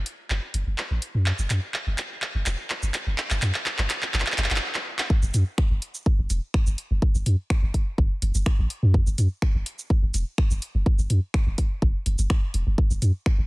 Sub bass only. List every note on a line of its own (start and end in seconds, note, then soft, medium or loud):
0.30 0.39 F#1 medium
0.54 0.63 F#1 loud
0.67 0.75 F#1 medium
0.91 0.99 A1 medium
1.15 1.32 F#2 medium
1.39 1.47 F#1 medium
1.50 1.59 F#2 medium
1.87 1.95 F#1 medium
2.35 2.43 F#1 medium
2.46 2.55 E1 medium
2.83 2.91 F#1 medium
3.07 3.15 F#1 medium
3.31 3.39 F#1 loud
3.42 3.51 F#2 medium
3.79 3.87 F#1 medium
4.14 4.23 F#1 loud
4.38 4.47 F#1 loud
4.51 4.59 F#1 medium
5.23 5.31 F#1 loud
5.34 5.43 F#2 medium
5.71 5.79 F#1 medium
6.19 6.27 F#1 medium
6.30 6.39 E1 loud
6.67 6.75 F#1 medium
6.91 6.99 F#1 medium
7.15 7.23 F#1 loud
7.26 7.35 F#2 medium
7.63 7.71 F#1 medium
7.98 8.07 F#1 medium
8.22 8.31 F#1 loud
8.35 8.43 F#1 medium
8.59 8.67 A1 medium
8.83 9.00 F#2 loud
9.07 9.15 F#1 loud
9.18 9.28 F#2 medium
9.55 9.63 F#1 medium
10.03 10.11 F#1 medium
10.14 10.23 E1 medium
10.51 10.59 F#1 medium
10.75 10.83 F#1 medium
10.99 11.07 F#1 loud
11.10 11.19 F#2 medium
11.47 11.55 F#1 medium
11.82 11.91 F#1 medium
12.06 12.15 F#1 loud
12.19 12.27 F#1 medium
12.54 12.63 E1 medium
12.67 12.75 F#1 medium
12.91 12.99 F#1 loud
13.02 13.11 F#2 medium
13.39 13.47 F#1 medium